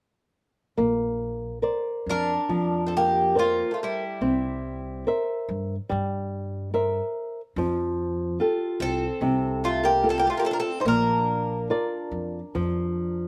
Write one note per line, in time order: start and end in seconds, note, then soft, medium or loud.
0.77 1.62 A#1 medium
0.77 1.61 A#3 medium
1.62 2.32 A#4 soft
1.62 2.32 C5 soft
1.62 2.32 D5 soft
2.06 2.35 F2 medium
2.06 2.83 D4 medium
2.11 2.87 A#4 loud
2.49 3.61 F2 medium
2.49 3.33 F3 medium
2.87 2.93 C4 soft
2.87 2.94 A4 soft
2.97 3.35 A#3 medium
2.97 3.35 G4 medium
3.35 3.71 A#3 medium
3.35 4.04 A#4 soft
3.35 4.04 C5 soft
3.35 4.05 D5 soft
3.39 3.71 F4 medium
3.71 3.78 A3 soft
3.71 3.80 F4 soft
3.83 5.04 G3 medium
3.83 5.05 E4 medium
4.21 5.04 C2 medium
4.21 5.04 C4 medium
5.07 5.74 A#4 soft
5.07 5.75 C5 soft
5.07 5.75 E5 soft
5.49 5.76 G2 medium
5.89 6.99 G2 medium
5.89 6.71 G3 medium
6.74 7.40 A#4 soft
6.74 7.40 C5 soft
6.74 7.40 E5 soft
7.56 8.37 F2 loud
7.56 8.38 F3 medium
8.40 9.05 F4 soft
8.40 9.05 G4 soft
8.40 9.05 A4 medium
8.80 9.07 C2 medium
8.80 9.58 C4 medium
8.80 9.66 A4 medium
9.21 10.28 C2 medium
9.21 10.01 C3 medium
9.64 9.82 A3 medium
9.64 9.85 F4 medium
9.83 10.08 A#3 medium
9.83 10.10 G4 medium
10.03 10.70 F4 soft
10.03 10.70 G4 soft
10.03 10.70 A4 medium
10.09 10.18 C4 medium
10.09 10.19 A4 medium
10.18 10.26 A#3 medium
10.18 10.28 G4 medium
10.27 10.35 A3 medium
10.27 10.37 F4 medium
10.37 10.45 A#3 medium
10.37 10.46 G4 medium
10.45 10.51 C4 medium
10.45 10.52 A4 medium
10.51 10.58 D4 medium
10.51 10.59 A#4 medium
10.60 10.80 C4 medium
10.60 10.81 A4 medium
10.80 10.85 D#4 medium
10.80 10.87 C5 medium
10.85 11.67 A#1 medium
10.85 11.67 A#3 medium
10.85 13.28 D4 medium
10.85 13.28 A#4 medium
11.70 12.38 F4 soft
11.70 12.38 A#4 soft
11.70 12.39 D5 medium
12.11 12.40 F2 medium
12.55 13.28 F2 medium
12.55 13.28 F3 medium